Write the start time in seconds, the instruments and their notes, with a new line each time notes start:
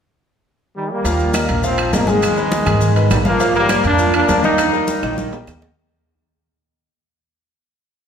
0.76 trombone section D#3 G3
0.91 trombone section G3 A#3
1.04 upright bass D#2, grand piano F3 F4 F5, high conga, high timbale, maracas
1.19 high conga, maracas
1.34 grand piano A#3 A#4 D#5, high conga, high timbale, claves, maracas
1.48 upright bass A#1, high conga, high timbale, maracas
1.63 grand piano F3 F4 F5, trombone section F3 C4, high conga, maracas
1.78 high conga, high timbale, claves, maracas
1.93 upright bass G#1, trombone section F3 A#3, grand piano A#3 A#4 D#5, high conga, high timbale, low timbale, maracas
2.07 trombone section D#3 G#3, grand piano G#3 G#4 G#5, high conga, maracas
2.22 high conga, high timbale, claves, maracas
2.37 grand piano B3 B4 D#5, high conga, maracas
2.52 high conga, high timbale, maracas
2.65 upright bass G#2, grand piano G#3 G#4 G#5, high conga, low conga, high timbale, claves, maracas
2.81 high conga, low conga, maracas
2.95 grand piano B3 B4 D#5, high conga, high timbale, maracas
3.10 upright bass A#1, trombone section D#3 G3, high conga, high timbale, low timbale, claves, maracas
3.25 grand piano F3 F4 F5, trombone section F3 A#3, high conga, maracas
3.40 grand piano F3 F4 F5, high conga, high timbale, maracas
3.55 trombone section G3 A#3, high conga, maracas
3.69 grand piano A#3 A#4 C5, high conga, high timbale, claves, maracas
3.84 upright bass F2, trombone section A#3 D4, high conga, high timbale, maracas
3.98 grand piano F3 F4 F5, high conga, maracas
4.14 trombone section A#3 D4, high conga, high timbale, claves, maracas
4.28 upright bass D#2, grand piano A#3 A#4 C5, high conga, high timbale, low timbale, maracas
4.43 grand piano D#3 D#4 D#5, trombone section A#3 D#4, high conga, maracas
4.58 high conga, high timbale, claves, maracas
4.73 grand piano G3 G4 A#4, high conga, maracas
4.88 high conga, high timbale, maracas
5.02 upright bass A#1, grand piano D#3 D#4 D#5, high conga, high timbale, claves, maracas
5.18 high conga, maracas
5.32 grand piano G3 G4 A#4, low timbale, maracas
5.47 upright bass D#2, low conga, low timbale, claves, maracas
5.61 grand piano D#3 D#4 D#5, low conga, low timbale